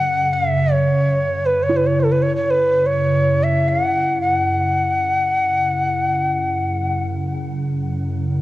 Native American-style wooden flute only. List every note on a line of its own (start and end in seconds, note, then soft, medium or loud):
0.00 0.35 F#5 loud
0.33 0.74 E5 medium
0.72 1.47 C#5 medium
1.46 1.65 B4 medium
1.63 1.78 C#5 medium
1.77 1.88 B4 medium
1.87 2.02 C#5 medium
2.00 2.13 A4 medium
2.12 2.24 B4 medium
2.22 2.36 C#5 medium
2.36 2.52 C#5 medium
2.51 2.88 B4 medium
2.86 3.45 C#5 medium
3.43 3.70 E5 medium
3.69 4.21 F#5 medium
4.21 7.04 F#5 medium